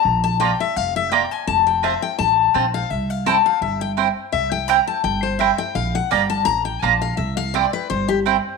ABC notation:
X:1
M:4/4
L:1/16
Q:"Swing" 1/4=168
K:Cmix
V:1 name="Steel-string acoustic guitar"
b2 a2 g2 e2 f2 e2 g2 _a2 | a2 g2 e2 g2 a6 f2 | e2 f2 a2 f2 e2 g2 z4 | e2 g2 b2 a2 g2 c2 e2 g2 |
f2 ^f2 g2 a2 b2 g2 a2 =f2 | e2 f2 d2 =B2 c2 G2 z4 |]
V:2 name="Mandolin"
z4 [B,Fdb] z6 z [B,Fdb] z3 | z4 [CFca] z6 z [CFca] z3 | z4 [CEcg] z6 z [CEcg] z3 | z4 [CEcg] z6 z [CEcg] z3 |
z4 [B,Fdb] z6 z [B,Fdb] z3 | z4 [CEcg] z6 z [CEcg] z3 |]
V:3 name="Upright bass" clef=bass
B,,,8 F,,,8 | F,,,8 A,,,4 B,,,4 | C,,8 G,,,8 | C,,8 G,,,8 |
B,,,4 G,,,4 A,,,4 B,,,4 | C,,8 G,,,8 |]